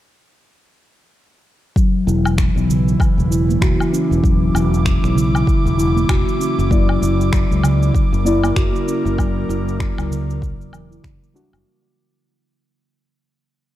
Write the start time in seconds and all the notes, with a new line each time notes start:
1.76 E3 F#3, kick, cabasa
1.88 E4
2.07 E1 E4, cabasa
2.25 cabasa, low woodblock
2.38 finger snap, kick, cabasa
2.56 B1 F#3, cabasa
2.69 C#3, cabasa
2.88 cabasa
3.00 kick, cabasa, low woodblock
3.18 E1, cabasa
3.31 E4, cabasa
3.49 A#3, cabasa
3.62 E1 F#4, finger snap, kick, cabasa
3.75 D6
3.80 cabasa, low woodblock
3.93 C#4, cabasa
4.11 E1, cabasa
4.24 F#3, kick, cabasa
4.54 E1 E4, cabasa, low woodblock
4.74 cabasa
4.85 finger snap, kick, cabasa
5.03 B1 F#3, finger snap, cabasa
5.16 C#3, cabasa
5.35 cabasa, low woodblock
5.47 kick, cabasa
5.65 E1, cabasa
5.78 E4, cabasa
5.96 A#3, cabasa
6.09 E1, finger snap, kick, cabasa, low woodblock
6.28 cabasa
6.40 C#4, cabasa
6.58 F#1, cabasa
6.70 F#3 A#3 E4 D5, kick, cabasa
6.89 low woodblock
7.02 F#1 E4, cabasa
7.21 cabasa
7.33 finger snap, kick, cabasa
7.51 C#2 F#3, cabasa
7.63 C#3, cabasa, low woodblock
7.82 A#4, cabasa
7.95 kick, cabasa
8.13 F#1, cabasa
8.25 A#3 E4 D5, cabasa
8.44 A#3, cabasa, low woodblock
8.56 F#1 F#4, finger snap, kick, cabasa
8.76 cabasa
8.87 C#4, cabasa
9.05 F#1, cabasa
9.17 F#3 A#3 E4, kick, cabasa, low woodblock
9.49 F#1 E4, cabasa
9.68 cabasa
9.80 finger snap, kick, cabasa
9.98 C#2 F#3, finger snap, cabasa, low woodblock
10.11 C#3, cabasa
10.30 cabasa
10.42 kick, cabasa
10.60 E1, cabasa
10.73 E3, cabasa, low woodblock
10.91 E4, cabasa
11.04 F#1 C#3, finger snap, kick, cabasa
11.22 A#3, cabasa
11.34 G3 A#3 D4 F#4, cabasa
11.53 F#1 A#3, cabasa, low woodblock